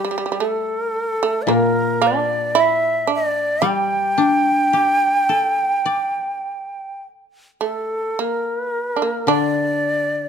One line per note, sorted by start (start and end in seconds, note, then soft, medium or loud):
0.00 0.43 E3 soft
0.00 2.56 G3 soft
0.00 0.47 G4 medium
0.05 0.10 G3 soft
0.11 0.17 G3 soft
0.18 0.25 G3 soft
0.26 0.31 G3 soft
0.32 0.39 G3 soft
0.40 1.18 A3 medium
0.45 1.44 A4 medium
1.23 1.48 A3 medium
1.42 1.53 D5 medium
1.47 4.72 A#2 medium
1.47 1.99 A#3 medium
1.51 2.08 A#4 medium
2.02 2.52 D4 medium
2.07 2.61 D5 medium
2.55 3.05 E4 medium
2.60 3.11 E5 medium
3.07 3.58 D4 medium
3.14 3.68 D5 medium
3.62 7.00 G3 soft
3.62 6.96 G4 medium
3.66 7.02 G5 medium
4.18 6.42 D4 soft
4.73 7.01 G4 soft
5.29 7.59 A4 soft
5.86 8.16 D5 soft
7.61 8.13 A3 soft
7.61 8.22 A4 medium
8.19 8.91 A#3 medium
8.19 9.30 A#4 medium
8.96 9.02 D4 soft
9.02 9.27 A#3 soft
9.27 10.29 D3 soft
9.27 10.29 D4 medium
9.27 10.29 D5 medium